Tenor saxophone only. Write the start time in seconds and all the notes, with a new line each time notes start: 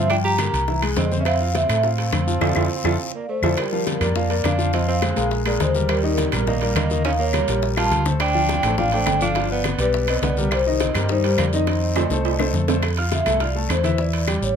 0.10 D4
0.24 G4
0.97 C4
1.19 C#4
1.25 C4
1.55 C4
1.84 C4
3.14 A#3
3.29 A3
3.58 G3
4.16 A#3
4.45 D4
4.74 C4
4.88 C4
5.46 A#3
5.61 G#3
5.90 G3
6.47 A#3
6.76 A#3
7.05 C#4
7.19 A#3
7.77 F4
8.21 D4
8.78 D4
8.93 D4
9.22 D4
9.52 B3
9.81 G3
10.09 C4
10.23 B3
10.52 G3
10.81 C4
11.10 G3
11.39 A#3
11.55 C4